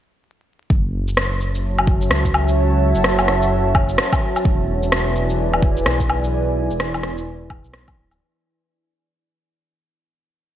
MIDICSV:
0, 0, Header, 1, 4, 480
1, 0, Start_track
1, 0, Key_signature, 3, "minor"
1, 0, Tempo, 468750
1, 720, Time_signature, 4, 2, 24, 8
1, 10808, End_track
2, 0, Start_track
2, 0, Title_t, "Ambient pad"
2, 0, Program_c, 0, 92
2, 717, Note_on_c, 0, 81, 79
2, 720, Note_on_c, 0, 66, 76
2, 720, Note_on_c, 0, 76, 69
2, 721, Note_on_c, 0, 73, 68
2, 4520, Note_off_c, 0, 81, 0
2, 4522, Note_off_c, 0, 66, 0
2, 4522, Note_off_c, 0, 73, 0
2, 4522, Note_off_c, 0, 76, 0
2, 4561, Note_on_c, 0, 74, 70
2, 4561, Note_on_c, 0, 80, 86
2, 4562, Note_on_c, 0, 64, 78
2, 4562, Note_on_c, 0, 71, 71
2, 8362, Note_off_c, 0, 74, 0
2, 8362, Note_off_c, 0, 80, 0
2, 8363, Note_off_c, 0, 64, 0
2, 8363, Note_off_c, 0, 71, 0
2, 10808, End_track
3, 0, Start_track
3, 0, Title_t, "Detuned saw bass"
3, 0, Program_c, 1, 39
3, 719, Note_on_c, 1, 30, 92
3, 1908, Note_off_c, 1, 30, 0
3, 1917, Note_on_c, 1, 30, 96
3, 2143, Note_off_c, 1, 30, 0
3, 2158, Note_on_c, 1, 37, 96
3, 3007, Note_off_c, 1, 37, 0
3, 3024, Note_on_c, 1, 30, 100
3, 4067, Note_off_c, 1, 30, 0
3, 4557, Note_on_c, 1, 28, 95
3, 5747, Note_off_c, 1, 28, 0
3, 5760, Note_on_c, 1, 28, 99
3, 5985, Note_off_c, 1, 28, 0
3, 6001, Note_on_c, 1, 35, 101
3, 6849, Note_off_c, 1, 35, 0
3, 6868, Note_on_c, 1, 28, 98
3, 7822, Note_off_c, 1, 28, 0
3, 7829, Note_on_c, 1, 35, 104
3, 8149, Note_off_c, 1, 35, 0
3, 8164, Note_on_c, 1, 26, 90
3, 8387, Note_off_c, 1, 26, 0
3, 10808, End_track
4, 0, Start_track
4, 0, Title_t, "Drums"
4, 718, Note_on_c, 9, 36, 103
4, 820, Note_off_c, 9, 36, 0
4, 1107, Note_on_c, 9, 82, 55
4, 1199, Note_on_c, 9, 37, 97
4, 1210, Note_off_c, 9, 82, 0
4, 1302, Note_off_c, 9, 37, 0
4, 1440, Note_on_c, 9, 82, 32
4, 1543, Note_off_c, 9, 82, 0
4, 1589, Note_on_c, 9, 82, 54
4, 1691, Note_off_c, 9, 82, 0
4, 1828, Note_on_c, 9, 77, 55
4, 1918, Note_on_c, 9, 36, 97
4, 1931, Note_off_c, 9, 77, 0
4, 2021, Note_off_c, 9, 36, 0
4, 2065, Note_on_c, 9, 82, 53
4, 2158, Note_on_c, 9, 37, 99
4, 2168, Note_off_c, 9, 82, 0
4, 2260, Note_off_c, 9, 37, 0
4, 2305, Note_on_c, 9, 36, 56
4, 2309, Note_on_c, 9, 82, 47
4, 2399, Note_on_c, 9, 77, 64
4, 2407, Note_off_c, 9, 36, 0
4, 2411, Note_off_c, 9, 82, 0
4, 2502, Note_off_c, 9, 77, 0
4, 2544, Note_on_c, 9, 82, 57
4, 2646, Note_off_c, 9, 82, 0
4, 3023, Note_on_c, 9, 82, 53
4, 3115, Note_on_c, 9, 37, 102
4, 3126, Note_off_c, 9, 82, 0
4, 3218, Note_off_c, 9, 37, 0
4, 3263, Note_on_c, 9, 77, 56
4, 3263, Note_on_c, 9, 82, 29
4, 3359, Note_off_c, 9, 82, 0
4, 3359, Note_on_c, 9, 37, 62
4, 3359, Note_on_c, 9, 82, 31
4, 3366, Note_off_c, 9, 77, 0
4, 3462, Note_off_c, 9, 37, 0
4, 3462, Note_off_c, 9, 82, 0
4, 3505, Note_on_c, 9, 82, 57
4, 3607, Note_off_c, 9, 82, 0
4, 3838, Note_on_c, 9, 36, 101
4, 3839, Note_on_c, 9, 77, 62
4, 3941, Note_off_c, 9, 36, 0
4, 3941, Note_off_c, 9, 77, 0
4, 3985, Note_on_c, 9, 82, 55
4, 4077, Note_on_c, 9, 37, 107
4, 4087, Note_off_c, 9, 82, 0
4, 4180, Note_off_c, 9, 37, 0
4, 4225, Note_on_c, 9, 36, 106
4, 4226, Note_on_c, 9, 77, 52
4, 4226, Note_on_c, 9, 82, 47
4, 4327, Note_off_c, 9, 36, 0
4, 4328, Note_off_c, 9, 77, 0
4, 4328, Note_off_c, 9, 82, 0
4, 4467, Note_on_c, 9, 77, 37
4, 4467, Note_on_c, 9, 82, 57
4, 4559, Note_on_c, 9, 36, 120
4, 4569, Note_off_c, 9, 77, 0
4, 4569, Note_off_c, 9, 82, 0
4, 4661, Note_off_c, 9, 36, 0
4, 4947, Note_on_c, 9, 82, 54
4, 5039, Note_on_c, 9, 37, 110
4, 5050, Note_off_c, 9, 82, 0
4, 5142, Note_off_c, 9, 37, 0
4, 5279, Note_on_c, 9, 82, 31
4, 5382, Note_off_c, 9, 82, 0
4, 5429, Note_on_c, 9, 82, 56
4, 5531, Note_off_c, 9, 82, 0
4, 5669, Note_on_c, 9, 77, 52
4, 5759, Note_on_c, 9, 36, 112
4, 5771, Note_off_c, 9, 77, 0
4, 5862, Note_off_c, 9, 36, 0
4, 5909, Note_on_c, 9, 82, 55
4, 6001, Note_on_c, 9, 37, 104
4, 6011, Note_off_c, 9, 82, 0
4, 6103, Note_off_c, 9, 37, 0
4, 6146, Note_on_c, 9, 36, 61
4, 6149, Note_on_c, 9, 82, 45
4, 6242, Note_on_c, 9, 77, 60
4, 6249, Note_off_c, 9, 36, 0
4, 6252, Note_off_c, 9, 82, 0
4, 6344, Note_off_c, 9, 77, 0
4, 6390, Note_on_c, 9, 82, 56
4, 6493, Note_off_c, 9, 82, 0
4, 6870, Note_on_c, 9, 82, 50
4, 6962, Note_on_c, 9, 37, 107
4, 6972, Note_off_c, 9, 82, 0
4, 7064, Note_off_c, 9, 37, 0
4, 7110, Note_on_c, 9, 77, 53
4, 7110, Note_on_c, 9, 82, 28
4, 7202, Note_off_c, 9, 82, 0
4, 7202, Note_on_c, 9, 37, 64
4, 7202, Note_on_c, 9, 82, 30
4, 7213, Note_off_c, 9, 77, 0
4, 7305, Note_off_c, 9, 37, 0
4, 7305, Note_off_c, 9, 82, 0
4, 7350, Note_on_c, 9, 82, 53
4, 7452, Note_off_c, 9, 82, 0
4, 7681, Note_on_c, 9, 36, 109
4, 7681, Note_on_c, 9, 77, 61
4, 7784, Note_off_c, 9, 36, 0
4, 7784, Note_off_c, 9, 77, 0
4, 7830, Note_on_c, 9, 82, 52
4, 7921, Note_on_c, 9, 37, 104
4, 7932, Note_off_c, 9, 82, 0
4, 8024, Note_off_c, 9, 37, 0
4, 8068, Note_on_c, 9, 36, 106
4, 8068, Note_on_c, 9, 77, 51
4, 8068, Note_on_c, 9, 82, 43
4, 8170, Note_off_c, 9, 77, 0
4, 8170, Note_off_c, 9, 82, 0
4, 8171, Note_off_c, 9, 36, 0
4, 8309, Note_on_c, 9, 77, 33
4, 8309, Note_on_c, 9, 82, 54
4, 8411, Note_off_c, 9, 77, 0
4, 8411, Note_off_c, 9, 82, 0
4, 10808, End_track
0, 0, End_of_file